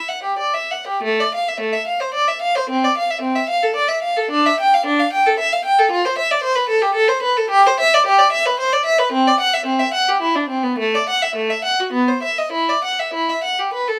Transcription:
0.08 F#5
0.23 G4
0.38 D5
0.54 E5
0.71 F#5
0.87 G4
1.03 A3
1.20 D5
1.35 F5
1.48 E5
1.60 A3
1.73 E5
1.87 F5
2.00 C5
2.14 D5
2.28 E5
2.41 F5
2.55 C5
2.70 C4
2.84 D5
2.97 F5
3.10 E5
3.21 C4
3.35 E5
3.49 F5
3.63 A4
3.75 D5
3.88 E5
4.02 F5
4.17 A4
4.31 D4
4.46 E5
4.60 G5
4.74 F5
4.86 D4
5.00 F5
5.13 G5
5.26 A4
5.39 E5
5.52 F5
5.65 G5
5.79 A4
5.91 F4
6.05 C5
6.18 E5
6.31 D5
6.43 C5
6.55 B4
6.69 A4
6.82 G4
6.95 A4
7.08 C5
7.22 B4
7.37 A4
7.50 G4
7.67 C5
7.80 E5
7.94 D5
8.06 G4
8.19 D5
8.32 E5
8.46 B4
8.59 C5
8.73 D5
8.85 E5
8.99 B4
9.12 C4
9.27 D5
9.40 F#5
9.54 E5
9.66 C4
9.80 E5
9.94 F#5
10.08 G4
10.21 E4
10.35 D4
10.49 C4
10.63 B3
10.79 A3
10.95 D5
11.09 F#5
11.22 E5
11.36 A3
11.50 E5
11.64 F#5
11.80 F#4
11.93 B3
12.08 C5
12.23 E5
12.38 D#5
12.52 E4
12.69 D5
12.84 F#5
12.99 E5
13.14 E4
13.29 E5
13.44 F#5
13.59 G4
13.73 B4
13.88 A4

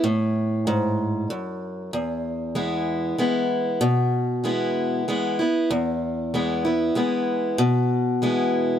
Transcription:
0.04 A2
0.67 G#2
1.30 F#2
1.93 E2
2.55 E3 G#3 B3 E4
3.18 E3 G#3 B3 E4
3.81 B2
4.44 E3 G#3 B3 E4
5.08 E3 G#3 B3 E4
5.39 B3 E4
5.71 E2
6.34 E3 G#3 B3 E4
6.65 B3 E4
6.95 E3 G#3 B3 E4
7.58 B2
8.22 E3 G#3 B3 E4

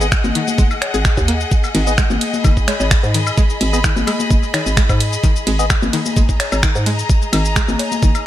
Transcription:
Already playing: G#1 G#4 D#5 F#5
0.01 B3 G#4 D#5, cabasa
0.12 finger snap, kick, cabasa
0.24 G#1, high conga, cabasa
0.35 D#3, closed hi-hat
0.48 high conga, cabasa
0.58 F#1 G#3, kick, cabasa
0.71 cabasa, high woodblock
0.82 finger snap, closed hi-hat, cowbell
0.94 G#1 G#4, cabasa
1.05 finger snap, kick, cabasa
1.17 D#2, kick, cabasa
1.28 A#3, closed hi-hat
1.41 cabasa
1.51 kick, cabasa
1.64 cabasa, high woodblock
1.75 G#1 D#3, closed hi-hat, ride
1.87 B3 G#4 D#5, cabasa
1.98 G#3, finger snap, kick, cabasa
2.10 G#1, high conga, cabasa
2.21 closed hi-hat, ride
2.34 high conga, cabasa
2.42 F#1 D#3 B5, kick, cabasa, high woodblock
2.57 kick, cabasa
2.68 G#3, finger snap, closed hi-hat, ride, cowbell
2.80 G#1, cowbell, cabasa
2.91 finger snap, kick, cabasa
3.03 G#2, cabasa
3.14 D#3, closed hi-hat, ride
3.27 cabasa, high woodblock
3.37 G#3, kick, cabasa
3.50 cabasa
3.61 G#1, closed hi-hat, ride
3.73 B3 G#4 D#5, cabasa
3.84 D#3, finger snap, kick, cabasa
3.96 G#1, high conga, cabasa
4.07 G#3, closed hi-hat, ride, high woodblock
4.20 high conga, cabasa
4.31 F#1, kick, cabasa
4.43 cabasa
4.54 D#3, finger snap, closed hi-hat, ride, cowbell
4.66 G#1, cabasa
4.77 G#3, finger snap, kick, cabasa
4.89 G#2, kick, cabasa, high woodblock
5.00 closed hi-hat, ride
5.13 cabasa
5.23 D#3, kick, cabasa
5.36 cabasa
5.47 G#1 G#3, closed hi-hat, ride
5.59 B3 G#4 D#5, cabasa
5.70 finger snap, kick, cabasa, high woodblock
5.82 G#1, high conga, cabasa
5.93 D#3, closed hi-hat, ride
6.06 high conga, cabasa
6.15 F#1 G#3 A#5, kick, cabasa
6.29 kick, cabasa
6.40 finger snap, closed hi-hat, ride, cowbell
6.52 G#1, cowbell, cabasa, high woodblock
6.63 D#3, finger snap, kick, cabasa
6.75 G#2, cabasa
6.86 G#3, closed hi-hat, ride
6.99 cabasa
7.10 kick, cabasa
7.22 cabasa
7.33 G#1 D#3, closed hi-hat, ride, high woodblock
7.45 cabasa
7.56 G#3, finger snap, kick, cabasa
7.68 G#1, high conga, cabasa
7.79 closed hi-hat, ride, cowbell
7.92 high conga, cabasa
8.03 F#1 D#3, kick, cabasa
8.15 closed hi-hat, cabasa, high woodblock

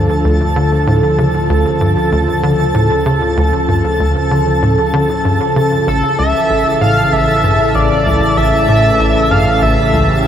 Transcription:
Already playing: D2 F3 D4 A4 A5
0.24 D2
0.56 D3
0.87 A2 C#3
1.18 C#3
1.50 D2
1.81 G2
2.12 D2
2.43 D3
2.75 A2
3.06 C#3
3.37 D2
3.68 G2
4.00 D2
4.31 D3
4.62 A2
4.93 D3
5.25 G2
5.56 C#3
5.87 A1 E3 A4
6.19 C#2 E5
6.50 A1
6.81 A2 F5
7.12 A1 E5
7.44 G2
7.75 A1 D5
8.06 C#2
8.37 A1 E5
8.68 A2
9.00 A1
9.31 G2 F5
9.62 A1 G4 E5
9.93 C#2

